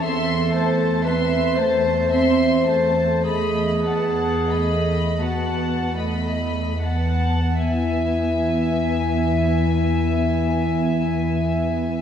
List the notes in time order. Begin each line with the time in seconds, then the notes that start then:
0.03 E2 C4 A4 E5 C6
0.55 A3 C5 A5
1.04 C4 B4 E5 C6
1.56 E2 A3 C5 A5
2.10 C4 E5 C6
2.67 A3 C5 A5
3.24 E2 A3 G#4 D#5 B5
3.86 B3 F#5 A5
4.50 A3 D#5 B5
5.21 E2 B3 F#4 F#5 A5
5.98 A3 D#5 B5
6.84 B3 F#5 A5
7.64 E2 B3 E4 E5 G#5